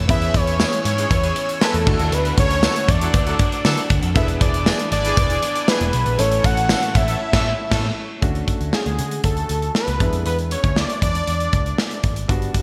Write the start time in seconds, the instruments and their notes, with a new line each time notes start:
Already playing: grand piano A3 C#4 E4 A4 B4 C#5, overdriven electric guitar E4, string machine C#5 E6
0.08 picked electric bass E2, overdriven electric guitar E3 B3 E4, grand piano B3 C#4 E4 G#4 B4, analog synth lead E5, string machine G#5, kick, closed hi-hat, cowbell
0.22 closed hi-hat
0.34 picked electric bass E2, analog synth lead C#5, kick, closed hi-hat
0.47 closed hi-hat
0.60 horn section E3 C#4 G#4, snare, tambourine, cowbell
0.73 closed hi-hat
0.84 picked electric bass G#2, overdriven electric guitar B3 E4, analog synth lead C#5, closed hi-hat
0.98 horn section E3 C#4 G#4, closed hi-hat
1.10 picked electric bass E2, overdriven electric guitar E3 B3 E4, kick, closed hi-hat, cowbell
1.23 horn section E3 C#4 G#4, closed hi-hat
1.36 closed hi-hat
1.49 closed hi-hat
1.61 horn section G#3 E4 B4, analog synth lead A4, snare, tambourine, cowbell
1.74 picked electric bass E2, closed hi-hat
1.86 picked electric bass D2, grand piano A3 D4 E4 F#4 A4, overdriven electric guitar A3 D4, string machine D4 F#5, kick, crash
1.91 overdriven electric guitar D3
1.99 picked electric bass D#2, closed hi-hat
2.12 picked electric bass D2, analog synth lead B4, closed hi-hat, cowbell
2.25 closed hi-hat
2.38 picked electric bass D2, analog synth lead C#5, kick, closed hi-hat
2.51 closed hi-hat
2.63 horn section F#3 E4 A4, snare, tambourine, cowbell
2.76 closed hi-hat
2.88 picked electric bass E2, overdriven electric guitar A3 D4, analog synth lead D5, kick, closed hi-hat
3.01 horn section F#3 E4 A4, closed hi-hat
3.13 picked electric bass D2, overdriven electric guitar D3 A3 D4, kick, closed hi-hat, cowbell
3.26 horn section F#3 E4 A4, closed hi-hat
3.39 overdriven electric guitar A3 D4, kick, closed hi-hat
3.52 closed hi-hat
3.65 picked electric bass D3, horn section F#3 E4 A4, snare, tambourine, cowbell
3.77 closed hi-hat
3.90 picked electric bass D2, kick, closed hi-hat
4.03 picked electric bass F2, closed hi-hat
4.14 picked electric bass E1, overdriven electric guitar E3 B3 E4, grand piano B3 D4 E4 G#4 A4, analog synth lead E5, string machine G#5, kick, closed hi-hat, cowbell
4.23 grand piano B4
4.28 closed hi-hat
4.41 picked electric bass E1, analog synth lead D5, kick, closed hi-hat
4.54 closed hi-hat
4.66 horn section E3 D4 G#4, snare, tambourine, cowbell
4.79 closed hi-hat
4.91 picked electric bass G#1, overdriven electric guitar B3 E4, analog synth lead D5, closed hi-hat
5.05 horn section E3 D4 G#4, closed hi-hat
5.17 picked electric bass E1, overdriven electric guitar E3 B3 E4, kick, closed hi-hat, cowbell
5.30 horn section E3 D4 G#4, closed hi-hat
5.42 overdriven electric guitar B3 E4, closed hi-hat
5.56 closed hi-hat
5.68 horn section E3 D4 G#4, analog synth lead B4, snare, tambourine, cowbell
5.81 picked electric bass E1, closed hi-hat
5.93 picked electric bass B1, closed hi-hat
6.06 picked electric bass A#1, closed hi-hat
6.18 picked electric bass A1, overdriven electric guitar A2 E3 A3, grand piano A3 C#4 E4 A4 C#5, analog synth lead C#5, string machine C#5 A5, closed hi-hat, cowbell
6.32 closed hi-hat
6.44 picked electric bass A1, analog synth lead F#5, kick, closed hi-hat
6.57 closed hi-hat
6.69 horn section E3 C#4 A4, snare, tambourine, cowbell
6.83 closed hi-hat
6.94 picked electric bass A1, overdriven electric guitar E3 A3, analog synth lead E5, kick, closed hi-hat
7.08 horn section E3 C#4 A4, closed hi-hat
7.32 picked electric bass A1, overdriven electric guitar A2 E3, horn section E3 C#4 A4, kick, snare, crash
7.37 overdriven electric guitar A3
7.70 picked electric bass A1, overdriven electric guitar A2 E3, horn section E3 C#4 A4, kick, snare, crash
7.75 overdriven electric guitar A3
8.21 picked electric bass D2, grand piano A3 C#4 D4 F#4, kick, closed hi-hat
8.35 closed hi-hat
8.48 kick, closed hi-hat
8.61 picked electric bass D2, closed hi-hat
8.73 analog synth lead G#4, snare
8.86 picked electric bass D2, closed hi-hat
8.99 picked electric bass D3, closed hi-hat
9.11 closed hi-hat
9.24 picked electric bass D2, analog synth lead A4, kick, closed hi-hat
9.37 closed hi-hat
9.49 picked electric bass D2, closed hi-hat
9.62 closed hi-hat
9.75 analog synth lead B4, snare
9.88 picked electric bass C#2, closed hi-hat
9.99 picked electric bass E2, grand piano G#3 B3 D4 E4, kick, closed hi-hat
10.13 picked electric bass F2, closed hi-hat
10.26 picked electric bass E2, analog synth lead B4, closed hi-hat
10.39 closed hi-hat
10.51 analog synth lead C#5, closed hi-hat
10.64 picked electric bass D2, kick, closed hi-hat
10.76 analog synth lead D5, snare
10.90 closed hi-hat
11.02 picked electric bass E2, analog synth lead D5, kick, closed hi-hat
11.15 closed hi-hat
11.27 picked electric bass E2, closed hi-hat
11.40 closed hi-hat
11.53 picked electric bass C#2, kick, closed hi-hat
11.66 closed hi-hat
11.78 snare
11.91 closed hi-hat
12.04 picked electric bass G#1, kick, closed hi-hat
12.16 closed hi-hat
12.28 picked electric bass G1, grand piano G3 B3 D4 F#4, kick, closed hi-hat
12.42 closed hi-hat
12.54 kick, closed hi-hat